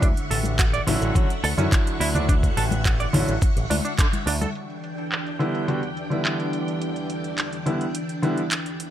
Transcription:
Already playing: D3 E5 F#5 C#6
0.02 D2 D4, kick, closed hi-hat, maracas
0.17 closed hi-hat, maracas
0.31 A1 A4, open hi-hat
0.44 closed hi-hat, muted conga, maracas
0.59 F#4, kick, clap, closed hi-hat, maracas
0.73 D5, closed hi-hat, maracas
0.87 A1 D3 F#3 C#4 E4, open hi-hat, low conga
1.01 A1, closed hi-hat, maracas
1.15 D3 F#3 C#4 F#4, kick, closed hi-hat, maracas
1.30 closed hi-hat, maracas
1.44 D2 A4, open hi-hat
1.57 F#2 D3 F#3 C#4 E4 C#5, closed hi-hat, maracas
1.72 kick, clap, closed hi-hat, maracas
1.87 closed hi-hat, maracas
2.00 D2 E4, open hi-hat
2.15 D4, closed hi-hat, low conga, maracas
2.29 D4, kick, closed hi-hat, maracas
2.43 kick, closed hi-hat, maracas
2.57 A1 A4, open hi-hat
2.71 closed hi-hat, muted conga, high conga, maracas
2.85 F#4, kick, clap, closed hi-hat, maracas
2.99 D5, closed hi-hat, maracas
3.13 A1 D3 F#3 C#4 E4, open hi-hat, low conga
3.28 A1, closed hi-hat, maracas
3.41 kick, closed hi-hat, maracas
3.56 A1, closed hi-hat, maracas
3.70 D2 D4, open hi-hat, muted conga, high conga
3.85 D4, closed hi-hat, maracas
3.99 D3, kick, clap, closed hi-hat, maracas
4.13 closed hi-hat, high conga, maracas
4.27 D2 D4, open hi-hat
4.41 A4, high conga, maracas
4.55 E3 D4 G5, closed hi-hat
4.70 closed hi-hat
4.84 closed hi-hat
4.98 closed hi-hat
5.12 clap, closed hi-hat
5.26 closed hi-hat
5.39 D3 G3 B3 E4, closed hi-hat
5.55 closed hi-hat
5.68 D3 G3 B3 F#4, closed hi-hat
5.83 closed hi-hat
5.97 closed hi-hat
6.10 D3 G3 B3 E4, closed hi-hat
6.25 clap, closed hi-hat
6.40 closed hi-hat
6.53 closed hi-hat
6.68 closed hi-hat
6.82 closed hi-hat
6.96 closed hi-hat
7.10 closed hi-hat
7.24 closed hi-hat
7.38 clap, closed hi-hat
7.53 closed hi-hat
7.66 D3 G3 B3 E4, closed hi-hat
7.81 closed hi-hat
7.95 closed hi-hat
8.09 closed hi-hat
8.22 D3 G3 B3 E4, closed hi-hat
8.38 closed hi-hat
8.51 clap, closed hi-hat
8.66 closed hi-hat
8.80 D3 C#4 E5 F#5, closed hi-hat

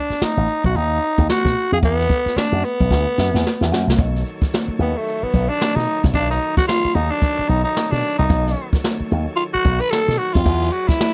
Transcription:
Already playing: D4
0.10 muted slap bass stroke, snare, closed hi-hat
0.21 D#4, muted slap bass stroke, snare, closed hi-hat
0.37 A1
0.48 closed hi-hat
0.64 B1 F#4, kick
0.74 D#2 D#4, closed hi-hat
1.02 closed hi-hat
1.18 D#2, kick
1.28 F#4, snare, closed hi-hat
1.45 B2, kick, snare
1.56 open hi-hat
1.72 F2 G#4
1.83 E2 B3, kick, closed hi-hat
2.00 snare
2.10 kick, closed hi-hat
2.26 muted slap bass stroke, snare, closed hi-hat
2.36 D4, muted slap bass stroke, snare, closed hi-hat
2.52 F#2
2.64 B3, closed hi-hat
2.80 B1, kick
2.91 D2, kick, snare
3.18 F#2, snare
3.34 E2, snare
3.46 snare
3.61 E2, snare
3.72 F#2, snare
3.87 C2, snare
3.97 B1 D#3 F#3 A4 C#5, kick, closed hi-hat
4.16 snare
4.26 closed hi-hat
4.42 muted slap bass stroke, kick, snare
4.53 snare, closed hi-hat
4.68 muted slap bass stroke
4.79 D#2 B3, closed hi-hat
4.97 A3
5.07 closed hi-hat
5.23 B3, muted slap bass stroke
5.34 B1, kick, closed hi-hat
5.49 D4
5.60 snare, closed hi-hat
5.75 B2 D#4, snare
5.87 open hi-hat
6.04 C2, kick, snare
6.13 B1 D4, kick, closed hi-hat
6.30 D#4, snare
6.40 closed hi-hat
6.57 F#4, muted slap bass stroke, kick, snare
6.68 F4, snare, closed hi-hat
6.85 muted slap bass stroke
6.95 D#2 D#4, closed hi-hat
7.10 D4
7.22 kick, closed hi-hat
7.39 muted slap bass stroke
7.49 B1 D#4, closed hi-hat
7.64 D#4
7.76 snare, closed hi-hat
7.91 B2 D4, snare
8.03 open hi-hat
8.18 C2 D#4
8.30 B1, kick, closed hi-hat
8.47 snare
8.56 closed hi-hat
8.73 muted slap bass stroke, kick, snare
8.83 snare, closed hi-hat
9.00 muted slap bass stroke
9.11 D#2, closed hi-hat
9.36 F4, closed hi-hat
9.53 F#4, muted slap bass stroke
9.65 B1, kick, closed hi-hat
9.80 B4
9.91 A4, snare, closed hi-hat
10.08 B2, snare
10.18 F#4, open hi-hat
10.34 F2 F4, kick, snare
10.45 E2 G#4 B4 D5, kick, closed hi-hat
10.63 snare
10.72 F#4, closed hi-hat
10.88 E4, muted slap bass stroke, kick, snare
10.99 snare, closed hi-hat

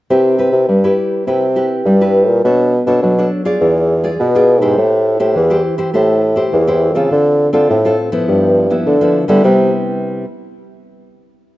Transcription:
0.10 C3 C4 E4 G4 B4
0.38 E4 G4 B4
0.52 C3
0.68 G2 G3
0.84 E4 G4 B4
1.27 C3 C4 E4 G4 B4
1.56 E4 G4 B4
1.85 G2 G3
2.01 E4 G4 B4
2.28 A#2
2.44 B2 B3 D4 A4 C#5
2.86 B2 D4 A4 C#5
3.02 B2 F#3
3.19 D4 A4 C#5
3.45 F4 G#4 D5
3.61 E2 E3
4.04 F4 G#4 D5
4.19 B2
4.35 F4 G#4 D5
4.61 G#2 E4 G4 C5
4.77 A2 A3
5.20 A2 E4 G4 C5
5.35 E2 E3
5.50 E4 G4 C5
5.78 E4 G4 C5
5.93 A2 A3 E4 G4 C5
6.36 E4 G4 C5
6.52 E2 E3
6.67 E4 G4 C5
6.95 C#3 C4 F4 A4
7.11 D3
7.53 D3 C4 F4 A4
7.69 A2
7.85 C4 F4 A4
8.12 F3 B3 E4
8.28 G2
8.70 F3 B3 E4
8.86 D3
9.01 F3 B3 E4
9.28 D3 G3 B3 E4
9.44 C3 G3 B3 E4

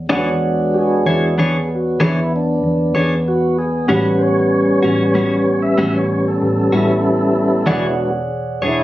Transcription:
0.09 E2 E3 G#3 B3 D4 G#4 C#5 D5 F#5
0.14 F#4
0.74 G4
0.79 G#4
1.06 E2 G#3 D4 E4 F#4 G#4 C#5
1.38 E3 D4 G#4 C#5
1.75 F#4
2.00 E2 E3 D4 G#4 C#5
2.05 E4
2.36 D4
2.63 E2
2.95 E2 D4 G#4 C#5
3.28 F#4
3.59 G#4
3.88 A1 A2 G3 B3 C#4 F#4 G4 B4 C#5 F#5
3.93 B4
4.18 C5 C#5
4.83 A1 G3 C#4 F#4
5.14 A2 G3 C#4 F#4
5.62 E5
5.77 A1 A2 G3 C#4 F#4
5.96 C#5
6.28 A4
6.41 A1
6.72 A1 G3 C#4 E4 F#4 A4
7.66 E1 E3 G#3 B3 D4 G#4 C#5 D5 F#5
7.70 F#4
8.62 E1 D4 G#4 C#5
8.67 E4

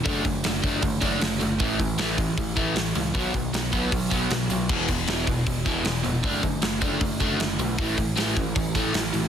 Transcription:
0.04 F#1 D3 A3 D4, kick, open hi-hat
0.24 F#1 D3 A3, kick, open hi-hat
0.44 F#1 D3 A3, snare, open hi-hat
0.63 F#1 D3 A3 D4, kick, open hi-hat
0.82 F#1 D3 A3, kick, open hi-hat
1.01 D3 A3 D4, kick, open hi-hat
1.21 F#1 D3 A3, snare, open hi-hat
1.40 F#1 D3 A3, open hi-hat
1.60 A1 A2 E3 A3, kick, open hi-hat
1.79 A1 A2 E3, kick, open hi-hat
1.98 A1 A2 E3 A3, snare, open hi-hat
2.18 A1 A2 E3, kick, open hi-hat
2.37 A1 A2 E3, kick, open hi-hat
2.56 A2 E3 A3, kick, open hi-hat
2.76 A1 A2 E3, snare, open hi-hat
2.95 C#2 A2 E3, open hi-hat
3.14 B1 B2 F#3 B3, kick, open hi-hat
3.34 B1 B2 F#3, kick, open hi-hat
3.53 B1 B2 F#3, snare, open hi-hat
3.72 B1 B2 F#3 B3, kick, open hi-hat
3.92 B1 B2 F#3, kick, open hi-hat
4.10 B2 F#3 B3, kick, open hi-hat
4.30 B1 B2 F#3, snare, open hi-hat
4.49 B1 B2 F#3, open hi-hat
4.69 E1 E2 B2 E3, kick, crash
4.88 E1 E2 B2, kick, open hi-hat
5.07 E1 E2 B2 E3, snare, open hi-hat
5.27 E1 E2 B2, kick, open hi-hat
5.46 E1 E2 B2, kick, open hi-hat
5.65 E2 B2 E3, kick, open hi-hat
5.84 E1 E2 B2, snare, open hi-hat
6.04 F1 E2 B2, open hi-hat
6.23 F#1 D3 A3 D4, kick, open hi-hat
6.43 F#1 D3 A3, kick, open hi-hat
6.62 F#1 D3 A3, snare, open hi-hat
6.81 F#1 D3 A3 D4, kick, open hi-hat
7.01 F#1 D3 A3, kick, open hi-hat
7.20 D3 A3 D4, kick, open hi-hat
7.40 F#1 D3 A3, snare, open hi-hat
7.59 B1 D3 A3, open hi-hat
7.78 A1 A2 E3 A3, kick, open hi-hat
7.97 A1 A2 E3, kick, open hi-hat
8.16 A1 A2 E3 A3, snare, open hi-hat
8.36 A1 A2 E3, kick, open hi-hat
8.55 A1 A2 E3, kick, open hi-hat
8.75 A2 E3 A3, kick, open hi-hat
8.94 A1 A2 E3, snare, open hi-hat
9.13 A1 A2 E3, open hi-hat

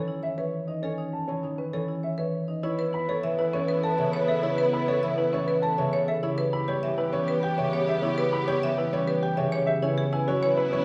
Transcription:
Already playing: D#3 E3 C#4 A4 C#5
0.08 E4
0.23 C#5 E5
0.38 B4 C#5
0.67 D#4 D#5
0.82 C#4 A4 C#5
0.98 D#4
1.13 A5
1.28 E3 C#5
1.43 D#3 D#4
1.58 C#4 B4
1.73 E3 A4 C#5
1.88 E4
2.03 C#5 E5
2.18 B4 C#5
2.48 D#4 D#5
2.63 B3 E4 B4 C#5
2.79 B4
2.93 E4 B4 B5
3.08 A3 A4 C#5
3.23 E3 B4 E5
3.39 E4 B4
3.53 A3 C#4 C#5
3.58 B4
3.68 B3 B4
3.83 A4 A5
3.89 B4
3.98 C#3 C#5 E5
4.13 A3 C#5
4.19 B4
4.28 A4 E5
4.43 E4 C#5
4.50 B4
4.58 B4
4.73 E4 B5
4.82 B4
4.88 A3 A4 C#5
5.03 E3 E5
5.14 B4
5.18 E4
5.33 A3 C#4 C#5
5.45 B3 B4
5.62 A4 A5
5.77 C#3 B4 C#5 E5
5.93 A3 C#5
6.08 A4 E5
6.23 B3 E4 G4 C#5
6.38 B4
6.53 E4 G4 B5
6.68 G3 G4 C#5
6.83 E3 G4 E5
6.98 E4 B4
7.13 G3 C#4 G4 C#5
7.28 B3 B4
7.43 G4 G5
7.48 G4
7.58 C#3 C#5 E5
7.73 G3 C#5
7.79 G4
7.88 G4 E5
8.02 E4 C#5
8.11 G4
8.18 B4
8.33 E4 B5
8.43 G4
8.47 G3 G4 C#5
8.63 E3 E5
8.74 G4 B4
8.78 E4
8.93 G3 C#4 C#5
9.05 B3 G4 B4
9.22 G4 G5
9.37 C#3 G4 C#5 E5
9.52 G3 C#5
9.66 G4 E5
9.82 B3 C#4 E4 B4 C#5
9.98 G#4
10.13 E4 B4 G#5
10.28 F#3 F#4 C#5
10.43 E3 B4 C#5
10.57 E4 B4
10.72 F#3 C#4 C#5
10.77 B4

